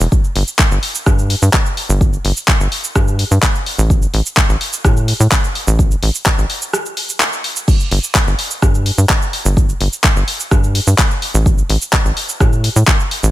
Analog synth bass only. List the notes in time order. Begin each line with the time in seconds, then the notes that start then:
0.00 E1
0.36 G1
0.71 G1
1.07 G2
1.42 G2
1.89 G1
2.25 G1
2.60 G1
2.96 G2
3.31 G2
3.78 A1
4.14 A1
4.49 A1
4.85 A2
5.20 A2
5.67 A1
6.03 A1
6.38 A1
7.91 G1
8.27 G1
8.62 G2
8.98 G2
9.45 G1
9.81 G1
10.16 G1
10.51 G2
10.87 G2
11.34 A1
11.70 A1
12.05 A1
12.40 A2
12.76 A2
13.23 A1